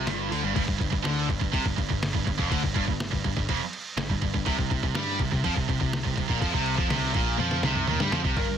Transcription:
0.00 0.28 F4 medium
0.07 0.30 G1 medium
0.07 0.30 G2 medium
0.07 snare loud
0.07 open hi-hat medium
0.31 0.43 D2 medium
0.31 0.43 D3 loud
0.31 open hi-hat medium
0.43 0.55 G1 medium
0.43 0.54 G2 medium
0.55 0.67 G1 loud
0.55 0.66 G2 loud
0.55 kick loud
0.55 crash medium
0.68 0.79 G1 medium
0.68 0.79 G2 medium
0.68 kick medium
0.80 0.92 G1 medium
0.80 0.91 G2 medium
0.80 kick medium
0.80 crash medium
0.92 1.03 G1 medium
0.92 1.04 G2 medium
0.92 kick medium
1.04 1.27 D2 medium
1.04 1.28 D3 loud
1.04 snare loud
1.04 crash medium
1.29 1.40 G1 medium
1.29 1.40 G2 medium
1.29 kick medium
1.29 crash medium
1.41 1.52 G1 medium
1.41 1.53 G2 medium
1.41 kick medium
1.53 1.64 C2 medium
1.53 1.64 C3 loud
1.53 kick loud
1.53 crash medium
1.65 1.77 G1 medium
1.65 1.75 G2 medium
1.65 kick medium
1.77 1.89 G1 medium
1.77 1.89 G2 medium
1.77 kick medium
1.77 crash medium
1.90 2.12 G1 medium
1.90 2.09 G2 medium
1.90 kick medium
2.03 snare loud
2.03 crash medium
2.14 2.25 G1 medium
2.14 2.24 G2 medium
2.14 kick medium
2.25 2.38 G1 medium
2.25 2.37 G2 medium
2.25 kick medium
2.25 crash medium
2.38 2.50 F1 medium
2.38 2.49 F2 medium
2.38 kick medium
2.51 2.62 D2 medium
2.51 2.62 D3 loud
2.51 kick medium
2.51 crash medium
2.63 2.74 G1 medium
2.63 2.74 G2 medium
2.63 kick medium
2.75 2.86 G1 loud
2.75 2.87 G2 loud
2.75 kick medium
2.75 crash medium
2.88 3.10 G1 medium
2.88 3.07 G2 medium
2.88 kick medium
3.00 snare loud
3.00 crash medium
3.12 3.23 G1 medium
3.12 3.23 G2 medium
3.12 kick medium
3.24 3.35 G1 medium
3.24 3.36 G2 medium
3.24 kick medium
3.24 crash medium
3.37 3.48 G1 medium
3.37 3.49 G2 medium
3.37 kick medium
3.37 snare soft
3.49 3.60 F1 medium
3.49 3.60 F2 loud
3.49 kick medium
3.49 crash medium
3.73 crash medium
3.97 4.08 G1 medium
3.97 4.08 G2 medium
3.97 snare loud
3.97 crash medium
4.09 4.21 G1 medium
4.09 4.21 G2 medium
4.09 kick medium
4.22 4.33 G1 medium
4.22 4.33 G2 medium
4.22 kick medium
4.22 crash medium
4.34 4.45 G1 medium
4.34 4.46 G2 medium
4.34 kick medium
4.46 4.57 C2 loud
4.46 4.58 C3 loud
4.46 kick medium
4.46 crash medium
4.59 4.70 C2 medium
4.59 4.71 C3 medium
4.59 kick medium
4.71 4.82 C2 medium
4.71 4.83 C3 medium
4.71 kick medium
4.71 crash medium
4.83 4.94 C2 medium
4.83 4.95 C3 medium
4.83 kick medium
4.94 5.17 G2 loud
4.94 5.19 G3 loud
4.94 snare loud
4.94 crash medium
5.19 5.31 C2 medium
5.19 5.31 C3 medium
5.19 kick medium
5.19 crash medium
5.32 5.43 C2 medium
5.32 5.44 C3 medium
5.32 kick medium
5.32 snare soft
5.44 5.55 F2 medium
5.44 5.56 F3 loud
5.44 kick medium
5.44 crash medium
5.56 5.67 C2 medium
5.56 5.68 C3 medium
5.56 kick medium
5.68 5.80 C2 medium
5.68 5.80 C3 medium
5.68 kick medium
5.68 crash medium
5.80 6.03 C2 medium
5.80 6.00 C3 medium
5.80 kick medium
5.93 snare loud
5.93 crash medium
6.05 6.16 C2 medium
6.05 6.17 C3 medium
6.05 kick medium
6.17 6.29 C2 medium
6.17 6.30 C3 medium
6.17 kick medium
6.17 crash medium
6.29 6.41 A#1 medium
6.29 6.41 A#2 medium
6.29 kick medium
6.41 6.53 F2 medium
6.41 6.53 F3 loud
6.41 kick loud
6.41 crash medium
6.54 6.76 C2 medium
6.54 6.78 C3 loud
6.54 kick medium
6.66 crash medium
6.78 6.89 F2 medium
6.78 6.90 F3 loud
6.78 kick loud
6.90 7.13 C2 medium
6.90 7.14 C3 loud
6.90 snare loud
6.90 crash medium
7.14 7.37 A#1 medium
7.14 7.38 A#2 loud
7.14 kick loud
7.14 crash medium
7.39 7.62 F2 loud
7.39 7.63 F3 loud
7.39 high tom medium
7.51 snare medium
7.63 7.86 C2 medium
7.63 7.87 C3 loud
7.63 snare medium
7.75 mid tom medium
7.87 7.99 D#2 medium
7.87 8.00 D#3 medium
7.87 mid tom medium
8.00 8.12 G2 medium
8.00 8.12 G3 loud
8.00 snare medium
8.12 8.24 F2 medium
8.12 8.24 F3 loud
8.12 snare medium
8.24 8.36 C2 medium
8.24 8.36 C3 medium
8.24 kick medium
8.36 8.48 G1 medium
8.36 8.48 G2 loud
8.36 8.58 A#4 medium
8.36 kick loud
8.36 crash medium
8.49 8.58 G1 medium
8.49 8.58 G2 medium

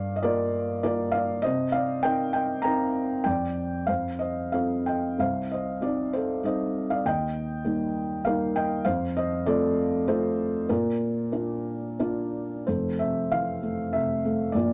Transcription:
0.00 1.41 G2 medium
0.00 0.15 D5 medium
0.00 0.18 F5 medium
0.16 0.23 D#5 medium
0.23 0.82 A#3 soft
0.23 0.82 F4 soft
0.23 0.82 G4 soft
0.23 0.80 A#4 medium
0.23 0.82 D5 medium
0.83 1.42 A#3 medium
0.83 1.42 F4 soft
0.83 1.43 G4 medium
0.83 1.13 A#4 medium
0.83 1.13 D5 medium
1.12 1.42 D5 medium
1.12 1.44 F5 medium
1.42 3.22 C3 medium
1.42 1.72 C5 medium
1.42 1.74 D#5 loud
1.72 2.02 D5 medium
1.72 2.04 F5 medium
2.03 2.62 C4 soft
2.03 2.63 D#4 soft
2.03 2.63 A#4 medium
2.03 2.33 D#5 medium
2.03 2.32 G5 loud
2.33 2.63 D#5 medium
2.33 2.62 G5 medium
2.62 3.23 C4 medium
2.62 3.24 D#4 soft
2.62 3.24 A#4 medium
2.62 3.21 G5 medium
2.62 3.26 A#5 loud
3.24 3.86 F2 medium
3.24 3.84 D5 medium
3.24 3.89 G5 medium
3.87 5.15 F2 medium
3.87 4.19 C5 medium
3.87 4.20 F5 medium
4.19 4.52 C5 medium
4.19 4.54 D#5 medium
4.52 5.17 C4 soft
4.52 5.17 F4 soft
4.52 5.17 A4 soft
4.52 4.85 C5 soft
4.52 4.87 F5 medium
4.86 5.18 D#5 soft
4.86 5.20 G5 medium
5.19 7.01 C2 medium
5.19 5.50 C5 medium
5.19 5.52 F5 medium
5.52 5.82 C5 medium
5.52 5.84 D#5 medium
5.81 6.42 G3 soft
5.81 6.42 C4 soft
5.81 6.43 D#4 soft
5.81 6.12 G4 medium
5.81 6.15 D5 medium
6.13 6.44 A4 medium
6.13 6.45 C5 medium
6.43 7.03 G3 soft
6.43 7.03 C4 soft
6.43 7.03 D#4 soft
6.43 6.88 C5 medium
6.43 6.92 D#5 medium
6.90 7.05 D5 medium
6.90 7.06 F5 medium
7.05 8.82 D#2 medium
7.05 8.22 D#5 medium
7.05 8.29 G5 medium
7.65 8.23 G3 soft
7.65 8.23 A#3 soft
7.65 8.24 D#4 soft
8.25 8.85 G3 medium
8.25 8.85 A#3 soft
8.25 8.85 D#4 medium
8.25 8.54 A#4 medium
8.25 8.56 F5 medium
8.56 8.85 D#5 medium
8.56 8.87 G5 medium
8.85 10.65 F2 medium
8.85 9.15 C5 medium
8.85 9.17 F5 medium
9.17 9.46 C5 medium
9.17 9.48 D#5 medium
9.46 10.06 A3 medium
9.46 10.05 C4 soft
9.46 10.06 F4 medium
9.46 10.04 A4 medium
9.46 10.09 D5 loud
10.07 10.67 A3 medium
10.07 10.67 C4 medium
10.07 10.68 F4 medium
10.07 10.65 A4 medium
10.07 10.71 C5 medium
10.69 12.63 A#2 medium
10.69 11.31 F4 medium
10.69 11.95 A#4 medium
11.32 11.97 A#3 medium
11.32 11.97 D4 soft
11.32 11.97 F4 medium
11.99 12.65 A#3 medium
11.99 12.66 D4 medium
11.99 12.66 F4 medium
12.67 14.50 F1 soft
12.67 14.50 F2 medium
12.67 13.60 A4 medium
12.67 13.01 C5 medium
12.99 13.93 C3 soft
12.99 13.32 E5 medium
13.32 14.50 E3 soft
13.32 13.95 F5 medium
13.63 14.23 A3 soft
13.93 14.52 C3 soft
13.93 14.55 E5 medium
14.25 14.53 A3 medium
14.52 14.73 A#1 medium
14.52 14.73 A#2 medium
14.52 14.73 F4 medium
14.52 14.73 D5 medium

